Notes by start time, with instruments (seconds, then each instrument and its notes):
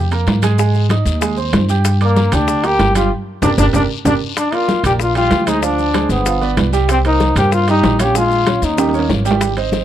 Already playing: upright bass F2
0.11 grand piano A#3 A#4 A#5, high bongo, high conga, high timbale, maracas
0.27 upright bass G#2, high bongo, low bongo, high conga, high timbale, low timbale, short guiro, maracas
0.42 grand piano G#3 G#4 G#5, high conga, high timbale, short guiro, maracas
0.58 grand piano G#3 G#4 G#5, high bongo, high conga, long guiro, maracas
0.74 high bongo, high conga, maracas
0.89 grand piano D#4 D#5 D#6, high bongo, high conga, high timbale, low timbale, short guiro, maracas
1.05 upright bass D#2, high bongo, high conga, short guiro, maracas
1.21 grand piano G#3 G#4 G#5, high bongo, high conga, high timbale, long guiro, maracas
1.37 grand piano C4 C5 C6, high bongo, high conga, maracas
1.53 upright bass G2, high bongo, low bongo, high conga, high timbale, low timbale, short guiro, maracas
1.69 grand piano G4 G5 G6, high conga, short guiro, maracas
1.85 high bongo, high conga, high timbale, long guiro, maracas
2.01 trombone A#3, grand piano D4 D5 D6, high bongo, high conga, high timbale, maracas
2.16 grand piano A#3 A#4 A#5, high bongo, high conga, low timbale, short guiro, maracas
2.32 upright bass D2, trombone D4, grand piano G4 G5 G6, high bongo, high conga, low conga, high timbale, short guiro, maracas
2.48 high bongo, high conga, long guiro, maracas
2.64 grand piano A#3 A#4 A#5, trombone G4, high bongo, high conga, high timbale, maracas
2.79 upright bass G1, high bongo, low bongo, high conga, high timbale, low timbale, short guiro, maracas
2.95 grand piano G3 G4 G5, trombone F4, high conga, high timbale, short guiro, maracas
3.42 upright bass G1, trombone D4, grand piano G4 A#4 D5, low bongo, low conga, high timbale, long guiro, maracas
3.58 upright bass G1, trombone D4, grand piano G4 A#4 D5, low bongo, low conga, high timbale, long guiro, maracas
3.73 upright bass G1, trombone D4, grand piano G4 A#4 D5, low bongo, low conga, high timbale, long guiro, maracas
4.05 upright bass G1, trombone D4, grand piano G4 A#4 D5, low bongo, low conga, high timbale, long guiro, maracas
4.37 trombone D4, high bongo, high conga, high timbale, long guiro, maracas
4.52 grand piano A#3 A#4 D5, trombone F4, high bongo, high conga, high timbale, maracas
4.68 high bongo, high conga, low timbale, short guiro, maracas
4.83 upright bass A#1, grand piano A#3 A#4 D5, trombone G4, high bongo, high conga, low conga, high timbale, short guiro, maracas
4.99 trombone F4, high bongo, high conga, long guiro, maracas
5.15 grand piano G3 G4 G5, trombone F4, high bongo, high conga, high timbale, maracas
5.31 upright bass D2, high bongo, low bongo, high conga, high timbale, low timbale, short guiro, maracas
5.47 grand piano G#3 G#4 C5, trombone D#4, high conga, high timbale, short guiro, maracas
5.62 grand piano F3 F4 F5, trombone D4, high bongo, high conga, long guiro, maracas
5.79 high bongo, high conga, maracas
5.93 grand piano G#3 G#4 C5, high bongo, high conga, high timbale, low timbale, short guiro, maracas
6.09 upright bass G1, trombone B3, high bongo, high conga, short guiro, maracas
6.26 grand piano F3 F4 F5, high bongo, high conga, high timbale, long guiro, maracas
6.41 grand piano B3 B4 D5, high bongo, high conga, maracas
6.57 upright bass C2, high bongo, low bongo, high conga, high timbale, low timbale, short guiro, maracas
6.73 grand piano G3 G4 G5, high conga, short guiro, maracas
6.89 trombone C4, high bongo, high conga, high timbale, long guiro, maracas
7.05 grand piano A#3 A#4 C5, trombone D#4, high bongo, high conga, high timbale, maracas
7.20 high bongo, high conga, low timbale, short guiro, maracas
7.35 upright bass G2, grand piano A#3 A#4 C5, trombone G4, high bongo, high conga, low conga, high timbale, short guiro, maracas
7.52 trombone F4, high bongo, high conga, long guiro, maracas
7.68 grand piano G3 G4 G5, trombone D#4, high bongo, high conga, high timbale, maracas
7.83 upright bass A#1, high bongo, low bongo, high conga, high timbale, low timbale, short guiro, maracas
7.99 grand piano C#4 C#5 F5, trombone G4, high conga, high timbale, short guiro, maracas
8.15 grand piano G#3 G#4 G#5, trombone F4, high bongo, high conga, long guiro, maracas
8.31 high bongo, high conga, maracas
8.47 grand piano C#4 C#5 F5, high bongo, high conga, high timbale, low timbale, short guiro, maracas
8.62 upright bass D#2, trombone D#4, high bongo, high conga, short guiro, maracas
8.78 grand piano G3 G4 G5, high bongo, high conga, high timbale, long guiro, maracas
8.89 high timbale
8.94 grand piano A#3 A#4 C#5, high bongo, high conga, maracas
8.99 high timbale
9.09 upright bass G#1, high bongo, low bongo, high conga, low timbale, short guiro, maracas
9.25 grand piano G3 G4 G5, high conga, short guiro, maracas
9.31 low timbale
9.41 high bongo, high conga, high timbale, long guiro, maracas
9.57 grand piano C4 C5 D#5, high bongo, high conga, high timbale, maracas
9.72 high bongo, high conga, low timbale, short guiro, maracas